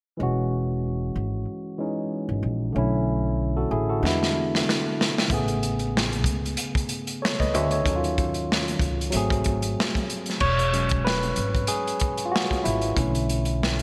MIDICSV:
0, 0, Header, 1, 4, 480
1, 0, Start_track
1, 0, Key_signature, 4, "major"
1, 0, Tempo, 638298
1, 146, Time_signature, 4, 2, 24, 8
1, 10395, End_track
2, 0, Start_track
2, 0, Title_t, "Tine electric piano"
2, 0, Program_c, 0, 4
2, 129, Note_on_c, 0, 52, 52
2, 143, Note_on_c, 0, 56, 50
2, 158, Note_on_c, 0, 61, 49
2, 172, Note_on_c, 0, 66, 60
2, 293, Control_c, 0, 64, 127
2, 1314, Note_off_c, 0, 52, 0
2, 1320, Note_off_c, 0, 56, 0
2, 1328, Note_off_c, 0, 61, 0
2, 1336, Note_off_c, 0, 66, 0
2, 1338, Note_on_c, 0, 52, 43
2, 1346, Note_on_c, 0, 56, 41
2, 1356, Note_on_c, 0, 61, 43
2, 1361, Note_on_c, 0, 63, 46
2, 2049, Note_on_c, 0, 50, 55
2, 2062, Note_off_c, 0, 52, 0
2, 2065, Note_on_c, 0, 57, 51
2, 2066, Note_off_c, 0, 56, 0
2, 2069, Note_off_c, 0, 61, 0
2, 2074, Note_off_c, 0, 63, 0
2, 2075, Control_c, 0, 64, 0
2, 2078, Note_on_c, 0, 61, 54
2, 2092, Note_on_c, 0, 64, 64
2, 2227, Control_c, 0, 64, 127
2, 2315, Note_off_c, 0, 64, 0
2, 2682, Note_on_c, 0, 69, 52
2, 2686, Note_on_c, 0, 66, 45
2, 2783, Note_off_c, 0, 69, 0
2, 2785, Note_off_c, 0, 66, 0
2, 2791, Note_on_c, 0, 68, 59
2, 2798, Note_on_c, 0, 64, 45
2, 2915, Note_off_c, 0, 68, 0
2, 2918, Note_off_c, 0, 64, 0
2, 2928, Note_on_c, 0, 69, 51
2, 2934, Note_on_c, 0, 66, 43
2, 2998, Note_off_c, 0, 50, 0
2, 3007, Note_off_c, 0, 57, 0
2, 3012, Note_on_c, 0, 50, 56
2, 3013, Note_off_c, 0, 61, 0
2, 3025, Note_on_c, 0, 56, 55
2, 3036, Control_c, 0, 64, 0
2, 3040, Note_on_c, 0, 59, 56
2, 3056, Note_on_c, 0, 64, 65
2, 3152, Note_off_c, 0, 69, 0
2, 3152, Control_c, 0, 64, 127
2, 3155, Note_off_c, 0, 66, 0
2, 3960, Note_off_c, 0, 50, 0
2, 3966, Note_off_c, 0, 56, 0
2, 3969, Note_on_c, 0, 49, 55
2, 3974, Note_off_c, 0, 59, 0
2, 3982, Note_off_c, 0, 64, 0
2, 3986, Note_on_c, 0, 57, 56
2, 3996, Control_c, 0, 64, 0
2, 4000, Note_on_c, 0, 59, 52
2, 4015, Note_on_c, 0, 68, 66
2, 4109, Control_c, 0, 64, 127
2, 5412, Note_off_c, 0, 68, 0
2, 5431, Note_on_c, 0, 73, 53
2, 5437, Note_on_c, 0, 69, 45
2, 5555, Note_off_c, 0, 73, 0
2, 5558, Note_off_c, 0, 69, 0
2, 5565, Note_on_c, 0, 75, 54
2, 5571, Note_on_c, 0, 71, 47
2, 5664, Note_off_c, 0, 75, 0
2, 5667, Note_off_c, 0, 71, 0
2, 5671, Note_on_c, 0, 76, 55
2, 5674, Note_on_c, 0, 73, 46
2, 5795, Note_off_c, 0, 76, 0
2, 5796, Note_off_c, 0, 73, 0
2, 5806, Note_on_c, 0, 73, 47
2, 5810, Note_on_c, 0, 69, 39
2, 5868, Note_off_c, 0, 49, 0
2, 5876, Note_off_c, 0, 57, 0
2, 5883, Note_off_c, 0, 59, 0
2, 5893, Note_on_c, 0, 51, 60
2, 5907, Note_on_c, 0, 54, 55
2, 5917, Control_c, 0, 64, 0
2, 5922, Note_on_c, 0, 61, 58
2, 5938, Note_on_c, 0, 63, 53
2, 5976, Note_off_c, 0, 63, 0
2, 5985, Note_on_c, 0, 65, 60
2, 6031, Note_off_c, 0, 73, 0
2, 6033, Note_off_c, 0, 69, 0
2, 6051, Control_c, 0, 64, 127
2, 6838, Note_off_c, 0, 54, 0
2, 6840, Note_off_c, 0, 51, 0
2, 6847, Note_on_c, 0, 54, 61
2, 6855, Note_off_c, 0, 61, 0
2, 6865, Note_on_c, 0, 57, 54
2, 6874, Control_c, 0, 64, 0
2, 6878, Note_on_c, 0, 60, 53
2, 6887, Note_off_c, 0, 65, 0
2, 6893, Note_on_c, 0, 68, 70
2, 6989, Control_c, 0, 64, 127
2, 7797, Note_off_c, 0, 54, 0
2, 7806, Note_off_c, 0, 57, 0
2, 7813, Note_off_c, 0, 60, 0
2, 7821, Note_off_c, 0, 68, 0
2, 7827, Note_on_c, 0, 73, 92
2, 7836, Control_c, 0, 64, 0
2, 7988, Control_c, 0, 64, 127
2, 8066, Note_on_c, 0, 54, 43
2, 8069, Note_on_c, 0, 56, 41
2, 8074, Note_on_c, 0, 61, 49
2, 8307, Note_on_c, 0, 71, 86
2, 8321, Note_off_c, 0, 73, 0
2, 8785, Note_on_c, 0, 68, 77
2, 8801, Note_off_c, 0, 71, 0
2, 9188, Note_off_c, 0, 68, 0
2, 9216, Note_on_c, 0, 65, 57
2, 9261, Note_on_c, 0, 66, 78
2, 9265, Note_off_c, 0, 65, 0
2, 9487, Note_off_c, 0, 66, 0
2, 9506, Note_on_c, 0, 64, 62
2, 9716, Note_off_c, 0, 54, 0
2, 9717, Note_off_c, 0, 56, 0
2, 9720, Note_off_c, 0, 61, 0
2, 9751, Note_on_c, 0, 50, 44
2, 9754, Control_c, 0, 64, 0
2, 9754, Note_on_c, 0, 52, 44
2, 9758, Note_on_c, 0, 57, 45
2, 9760, Note_on_c, 0, 61, 52
2, 9903, Control_c, 0, 64, 127
2, 10395, Note_off_c, 0, 50, 0
2, 10395, Note_off_c, 0, 52, 0
2, 10395, Note_off_c, 0, 57, 0
2, 10395, Note_off_c, 0, 61, 0
2, 10395, Note_off_c, 0, 64, 0
2, 10395, End_track
3, 0, Start_track
3, 0, Title_t, "Upright bass"
3, 0, Program_c, 1, 32
3, 149, Note_on_c, 1, 28, 72
3, 838, Note_off_c, 1, 28, 0
3, 869, Note_on_c, 1, 32, 68
3, 1084, Note_off_c, 1, 32, 0
3, 1720, Note_on_c, 1, 32, 67
3, 1816, Note_off_c, 1, 32, 0
3, 1825, Note_on_c, 1, 34, 67
3, 2042, Note_off_c, 1, 34, 0
3, 2073, Note_on_c, 1, 35, 79
3, 2759, Note_off_c, 1, 35, 0
3, 2790, Note_on_c, 1, 33, 76
3, 3005, Note_off_c, 1, 33, 0
3, 3028, Note_on_c, 1, 40, 80
3, 3477, Note_off_c, 1, 40, 0
3, 3990, Note_on_c, 1, 33, 80
3, 4697, Note_off_c, 1, 33, 0
3, 4697, Note_on_c, 1, 37, 77
3, 4918, Note_off_c, 1, 37, 0
3, 5566, Note_on_c, 1, 37, 68
3, 5670, Note_off_c, 1, 37, 0
3, 5670, Note_on_c, 1, 38, 69
3, 5884, Note_off_c, 1, 38, 0
3, 5910, Note_on_c, 1, 39, 71
3, 6598, Note_off_c, 1, 39, 0
3, 6617, Note_on_c, 1, 37, 69
3, 6838, Note_off_c, 1, 37, 0
3, 6874, Note_on_c, 1, 32, 81
3, 7320, Note_off_c, 1, 32, 0
3, 7831, Note_on_c, 1, 28, 84
3, 8519, Note_off_c, 1, 28, 0
3, 8554, Note_on_c, 1, 32, 71
3, 8767, Note_off_c, 1, 32, 0
3, 9517, Note_on_c, 1, 32, 80
3, 9729, Note_off_c, 1, 32, 0
3, 9753, Note_on_c, 1, 35, 88
3, 10395, Note_off_c, 1, 35, 0
3, 10395, End_track
4, 0, Start_track
4, 0, Title_t, "Drums"
4, 3049, Note_on_c, 9, 38, 47
4, 3124, Note_off_c, 9, 38, 0
4, 3179, Note_on_c, 9, 38, 44
4, 3255, Note_off_c, 9, 38, 0
4, 3421, Note_on_c, 9, 38, 55
4, 3496, Note_off_c, 9, 38, 0
4, 3528, Note_on_c, 9, 38, 74
4, 3604, Note_off_c, 9, 38, 0
4, 3768, Note_on_c, 9, 38, 75
4, 3843, Note_off_c, 9, 38, 0
4, 3899, Note_on_c, 9, 38, 75
4, 3974, Note_off_c, 9, 38, 0
4, 3985, Note_on_c, 9, 36, 81
4, 3987, Note_on_c, 9, 42, 65
4, 4060, Note_off_c, 9, 36, 0
4, 4062, Note_off_c, 9, 42, 0
4, 4120, Note_on_c, 9, 42, 35
4, 4196, Note_off_c, 9, 42, 0
4, 4233, Note_on_c, 9, 42, 45
4, 4308, Note_off_c, 9, 42, 0
4, 4356, Note_on_c, 9, 42, 36
4, 4431, Note_off_c, 9, 42, 0
4, 4490, Note_on_c, 9, 38, 83
4, 4565, Note_off_c, 9, 38, 0
4, 4605, Note_on_c, 9, 42, 36
4, 4681, Note_off_c, 9, 42, 0
4, 4694, Note_on_c, 9, 36, 78
4, 4706, Note_on_c, 9, 42, 56
4, 4769, Note_off_c, 9, 36, 0
4, 4781, Note_off_c, 9, 42, 0
4, 4855, Note_on_c, 9, 42, 36
4, 4930, Note_off_c, 9, 42, 0
4, 4941, Note_on_c, 9, 42, 79
4, 5016, Note_off_c, 9, 42, 0
4, 5077, Note_on_c, 9, 36, 79
4, 5093, Note_on_c, 9, 42, 42
4, 5152, Note_off_c, 9, 36, 0
4, 5168, Note_off_c, 9, 42, 0
4, 5180, Note_on_c, 9, 42, 56
4, 5255, Note_off_c, 9, 42, 0
4, 5318, Note_on_c, 9, 42, 41
4, 5393, Note_off_c, 9, 42, 0
4, 5452, Note_on_c, 9, 38, 97
4, 5527, Note_off_c, 9, 38, 0
4, 5564, Note_on_c, 9, 36, 61
4, 5578, Note_on_c, 9, 42, 39
4, 5639, Note_off_c, 9, 36, 0
4, 5653, Note_off_c, 9, 42, 0
4, 5674, Note_on_c, 9, 42, 54
4, 5749, Note_off_c, 9, 42, 0
4, 5796, Note_on_c, 9, 42, 39
4, 5871, Note_off_c, 9, 42, 0
4, 5908, Note_on_c, 9, 36, 82
4, 5912, Note_on_c, 9, 42, 63
4, 5983, Note_off_c, 9, 36, 0
4, 5987, Note_off_c, 9, 42, 0
4, 6046, Note_on_c, 9, 42, 38
4, 6121, Note_off_c, 9, 42, 0
4, 6151, Note_on_c, 9, 42, 44
4, 6152, Note_on_c, 9, 36, 74
4, 6226, Note_off_c, 9, 42, 0
4, 6227, Note_off_c, 9, 36, 0
4, 6274, Note_on_c, 9, 42, 35
4, 6349, Note_off_c, 9, 42, 0
4, 6407, Note_on_c, 9, 38, 75
4, 6482, Note_off_c, 9, 38, 0
4, 6526, Note_on_c, 9, 42, 34
4, 6601, Note_off_c, 9, 42, 0
4, 6614, Note_on_c, 9, 36, 76
4, 6627, Note_on_c, 9, 42, 53
4, 6689, Note_off_c, 9, 36, 0
4, 6702, Note_off_c, 9, 42, 0
4, 6776, Note_on_c, 9, 42, 36
4, 6851, Note_off_c, 9, 42, 0
4, 6859, Note_on_c, 9, 42, 75
4, 6934, Note_off_c, 9, 42, 0
4, 6997, Note_on_c, 9, 36, 78
4, 7010, Note_on_c, 9, 42, 45
4, 7072, Note_off_c, 9, 36, 0
4, 7085, Note_off_c, 9, 42, 0
4, 7101, Note_on_c, 9, 42, 52
4, 7113, Note_on_c, 9, 36, 65
4, 7176, Note_off_c, 9, 42, 0
4, 7189, Note_off_c, 9, 36, 0
4, 7237, Note_on_c, 9, 42, 41
4, 7312, Note_off_c, 9, 42, 0
4, 7370, Note_on_c, 9, 38, 92
4, 7446, Note_off_c, 9, 38, 0
4, 7484, Note_on_c, 9, 36, 64
4, 7492, Note_on_c, 9, 42, 39
4, 7559, Note_off_c, 9, 36, 0
4, 7568, Note_off_c, 9, 42, 0
4, 7593, Note_on_c, 9, 42, 53
4, 7668, Note_off_c, 9, 42, 0
4, 7714, Note_on_c, 9, 42, 41
4, 7743, Note_on_c, 9, 38, 28
4, 7789, Note_off_c, 9, 42, 0
4, 7819, Note_off_c, 9, 38, 0
4, 7822, Note_on_c, 9, 49, 77
4, 7827, Note_on_c, 9, 36, 84
4, 7898, Note_off_c, 9, 49, 0
4, 7902, Note_off_c, 9, 36, 0
4, 7964, Note_on_c, 9, 42, 40
4, 8039, Note_off_c, 9, 42, 0
4, 8073, Note_on_c, 9, 42, 44
4, 8148, Note_off_c, 9, 42, 0
4, 8190, Note_on_c, 9, 42, 38
4, 8208, Note_on_c, 9, 36, 84
4, 8265, Note_off_c, 9, 42, 0
4, 8283, Note_off_c, 9, 36, 0
4, 8324, Note_on_c, 9, 38, 81
4, 8400, Note_off_c, 9, 38, 0
4, 8442, Note_on_c, 9, 42, 37
4, 8517, Note_off_c, 9, 42, 0
4, 8542, Note_on_c, 9, 42, 53
4, 8617, Note_off_c, 9, 42, 0
4, 8682, Note_on_c, 9, 36, 72
4, 8691, Note_on_c, 9, 42, 38
4, 8758, Note_off_c, 9, 36, 0
4, 8766, Note_off_c, 9, 42, 0
4, 8778, Note_on_c, 9, 42, 83
4, 8853, Note_off_c, 9, 42, 0
4, 8930, Note_on_c, 9, 42, 42
4, 9005, Note_off_c, 9, 42, 0
4, 9021, Note_on_c, 9, 42, 56
4, 9035, Note_on_c, 9, 36, 68
4, 9096, Note_off_c, 9, 42, 0
4, 9110, Note_off_c, 9, 36, 0
4, 9156, Note_on_c, 9, 42, 43
4, 9231, Note_off_c, 9, 42, 0
4, 9292, Note_on_c, 9, 38, 105
4, 9368, Note_off_c, 9, 38, 0
4, 9406, Note_on_c, 9, 36, 66
4, 9418, Note_on_c, 9, 42, 43
4, 9482, Note_off_c, 9, 36, 0
4, 9493, Note_off_c, 9, 42, 0
4, 9515, Note_on_c, 9, 42, 57
4, 9590, Note_off_c, 9, 42, 0
4, 9637, Note_on_c, 9, 42, 40
4, 9712, Note_off_c, 9, 42, 0
4, 9750, Note_on_c, 9, 36, 88
4, 9751, Note_on_c, 9, 42, 69
4, 9825, Note_off_c, 9, 36, 0
4, 9826, Note_off_c, 9, 42, 0
4, 9887, Note_on_c, 9, 42, 38
4, 9962, Note_off_c, 9, 42, 0
4, 9997, Note_on_c, 9, 42, 49
4, 10073, Note_off_c, 9, 42, 0
4, 10116, Note_on_c, 9, 42, 38
4, 10191, Note_off_c, 9, 42, 0
4, 10252, Note_on_c, 9, 38, 82
4, 10328, Note_off_c, 9, 38, 0
4, 10371, Note_on_c, 9, 42, 40
4, 10395, Note_off_c, 9, 42, 0
4, 10395, End_track
0, 0, End_of_file